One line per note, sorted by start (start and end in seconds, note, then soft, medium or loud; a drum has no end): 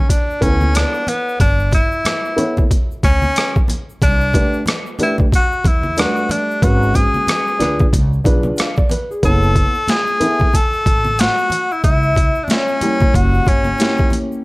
0.00 0.11 C#4 medium
0.09 0.44 D4 medium
0.09 kick medium
0.09 closed hi-hat medium
0.09 high conga soft
0.09 shaker medium
0.30 shaker soft
0.41 0.82 D2 medium
0.41 1.34 B3 medium
0.41 0.77 C#4 medium
0.41 1.35 E4 medium
0.41 1.35 A4 medium
0.41 0.51 B4 medium
0.41 kick medium
0.41 closed hi-hat medium
0.41 shaker soft
0.49 1.39 C#5 medium
0.61 high conga medium
0.61 shaker soft
0.74 1.10 D4 medium
0.74 cross-stick loud
0.74 closed hi-hat medium
0.74 shaker medium
0.94 shaker soft
1.07 1.40 B3 medium
1.07 closed hi-hat medium
1.07 low conga medium
1.07 shaker soft
1.29 shaker soft
1.40 1.80 G1 loud
1.40 1.71 D4 medium
1.40 kick loud
1.40 closed hi-hat medium
1.40 shaker medium
1.59 shaker soft
1.71 2.67 E4 medium
1.71 kick medium
1.71 closed hi-hat medium
1.71 high conga soft
1.71 shaker soft
1.92 shaker soft
2.05 cross-stick loud
2.05 closed hi-hat medium
2.05 low conga medium
2.05 shaker medium
2.25 shaker soft
2.36 2.62 B3 medium
2.36 2.63 E4 medium
2.36 2.63 A4 medium
2.36 2.63 C#5 medium
2.36 closed hi-hat medium
2.36 low conga medium
2.36 shaker soft
2.57 kick medium
2.57 high conga medium
2.57 shaker soft
2.71 kick medium
2.71 closed hi-hat medium
2.71 high conga soft
2.71 shaker medium
2.91 shaker soft
3.03 3.28 D2 medium
3.03 3.65 C#4 loud
3.03 kick medium
3.03 closed hi-hat medium
3.03 shaker soft
3.22 high conga medium
3.22 shaker soft
3.35 cross-stick loud
3.35 closed hi-hat medium
3.35 shaker medium
3.55 kick loud
3.55 shaker soft
3.68 closed hi-hat medium
3.68 low conga medium
3.68 shaker soft
3.90 shaker soft
4.02 4.41 C2 medium
4.02 4.63 D4 loud
4.02 kick loud
4.02 closed hi-hat medium
4.02 shaker medium
4.21 shaker soft
4.33 4.59 A3 medium
4.33 4.59 D4 medium
4.33 4.59 G4 medium
4.33 4.59 B4 medium
4.33 kick medium
4.33 closed hi-hat medium
4.33 high conga soft
4.33 shaker soft
4.53 shaker soft
4.66 cross-stick loud
4.66 closed hi-hat medium
4.66 low conga medium
4.66 shaker medium
4.86 shaker soft
4.99 5.24 A3 medium
4.99 5.24 D4 medium
4.99 5.24 G4 medium
4.99 5.25 B4 medium
4.99 closed hi-hat medium
4.99 low conga medium
4.99 shaker soft
5.03 5.17 E4 medium
5.18 kick medium
5.18 high conga medium
5.18 shaker soft
5.32 5.69 F#4 medium
5.32 kick medium
5.32 closed hi-hat medium
5.32 high conga soft
5.32 shaker medium
5.52 shaker soft
5.64 6.04 E2 medium
5.64 6.01 E4 medium
5.64 kick medium
5.64 closed hi-hat medium
5.64 shaker soft
5.83 high conga medium
5.83 shaker soft
5.96 6.63 G3 medium
5.96 6.62 A3 medium
5.96 6.62 D4 medium
5.96 6.33 F#4 loud
5.96 6.61 B4 medium
5.96 cross-stick loud
5.96 closed hi-hat medium
5.96 shaker medium
6.16 shaker soft
6.29 6.65 D4 medium
6.29 closed hi-hat medium
6.29 low conga medium
6.29 shaker soft
6.51 shaker soft
6.61 7.02 G#1 medium
6.61 7.54 G#3 medium
6.61 7.55 C#4 medium
6.61 7.55 F#4 medium
6.61 6.97 F#4 medium
6.61 7.55 B4 medium
6.61 kick loud
6.61 closed hi-hat medium
6.61 shaker medium
6.82 shaker medium
6.94 7.93 G#4 medium
6.94 kick medium
6.94 closed hi-hat medium
6.94 high conga soft
6.94 shaker soft
7.14 high conga medium
7.14 shaker soft
7.27 cross-stick loud
7.27 closed hi-hat medium
7.27 low conga medium
7.27 shaker medium
7.47 shaker soft
7.59 7.84 D2 medium
7.59 7.84 D4 medium
7.59 7.85 F4 medium
7.59 7.85 G#4 medium
7.59 7.85 B4 medium
7.59 cross-stick soft
7.59 closed hi-hat medium
7.59 low conga medium
7.59 shaker soft
7.80 kick medium
7.80 high conga medium
7.80 shaker soft
7.93 8.17 C#2 loud
7.93 kick medium
7.93 closed hi-hat loud
7.93 high conga soft
7.93 shaker medium
8.13 shaker soft
8.24 8.50 B1 medium
8.24 8.65 D4 medium
8.24 8.65 F4 medium
8.24 8.58 G#4 medium
8.24 8.58 B4 medium
8.24 kick medium
8.24 closed hi-hat medium
8.24 shaker soft
8.43 high conga medium
8.43 shaker soft
8.56 8.76 F5 medium
8.56 cross-stick loud
8.56 closed hi-hat medium
8.56 shaker medium
8.76 8.90 D5 medium
8.76 kick medium
8.76 shaker soft
8.89 9.09 B4 medium
8.89 closed hi-hat medium
8.89 low conga medium
8.89 shaker soft
9.10 9.41 G#4 medium
9.10 shaker soft
9.23 9.63 F#1 loud
9.23 9.71 B3 medium
9.23 9.72 E4 medium
9.23 9.72 A4 medium
9.23 9.92 A4 loud
9.23 9.72 C#5 medium
9.23 9.85 A5 medium
9.23 kick loud
9.23 closed hi-hat medium
9.23 shaker medium
9.43 shaker soft
9.55 kick medium
9.55 closed hi-hat medium
9.55 high conga soft
9.55 shaker soft
9.75 shaker soft
9.87 10.57 G#4 loud
9.87 10.54 G#5 medium
9.87 snare loud
9.87 closed hi-hat medium
9.87 low conga medium
9.87 shaker medium
10.07 shaker soft
10.20 10.45 B3 medium
10.20 10.46 E4 medium
10.20 10.46 A4 medium
10.20 10.46 E5 medium
10.20 closed hi-hat medium
10.20 low conga medium
10.20 shaker soft
10.40 kick medium
10.40 high conga medium
10.40 shaker soft
10.53 11.22 A4 loud
10.53 11.19 A5 medium
10.53 kick medium
10.53 closed hi-hat loud
10.53 high conga soft
10.53 shaker medium
10.73 shaker soft
10.85 11.26 A1 medium
10.85 kick medium
10.85 closed hi-hat medium
10.85 shaker soft
11.05 high conga medium
11.05 shaker soft
11.18 11.74 F#4 loud
11.18 11.71 F#5 medium
11.18 snare loud
11.18 closed hi-hat medium
11.18 shaker medium
11.38 shaker soft
11.50 closed hi-hat medium
11.50 low conga medium
11.50 shaker soft
11.71 11.83 E4 medium
11.71 11.84 E5 medium
11.71 shaker soft
11.83 12.24 C#2 medium
11.83 12.45 E4 medium
11.83 12.40 E5 medium
11.83 kick loud
11.83 closed hi-hat medium
11.83 shaker medium
12.03 shaker soft
12.15 kick medium
12.15 closed hi-hat medium
12.15 high conga soft
12.15 shaker soft
12.35 shaker soft
12.44 12.52 D4 medium
12.44 12.49 D5 medium
12.44 low conga medium
12.44 shaker medium
12.50 13.17 C#4 medium
12.50 13.15 C#5 medium
12.50 snare loud
12.50 closed hi-hat medium
12.68 shaker soft
12.81 13.75 G3 medium
12.81 13.74 A#3 medium
12.81 13.74 C#4 medium
12.81 13.74 E4 medium
12.81 closed hi-hat medium
12.81 low conga medium
12.81 shaker soft
13.00 kick medium
13.00 high conga medium
13.00 shaker soft
13.14 13.39 F#1 loud
13.14 13.50 F#4 medium
13.14 13.47 F#5 medium
13.14 kick medium
13.14 closed hi-hat medium
13.14 high conga soft
13.14 shaker medium
13.34 shaker soft
13.45 13.71 G1 medium
13.45 14.20 C#4 medium
13.45 14.19 C#5 medium
13.45 kick medium
13.45 closed hi-hat medium
13.45 shaker soft
13.64 high conga medium
13.64 shaker soft
13.78 14.44 A#3 medium
13.78 14.44 C#4 medium
13.78 14.44 E4 medium
13.78 14.44 G4 medium
13.78 snare loud
13.78 closed hi-hat medium
13.78 shaker medium
13.97 kick loud
13.97 shaker soft
14.10 closed hi-hat medium
14.10 low conga medium
14.10 shaker soft
14.32 shaker soft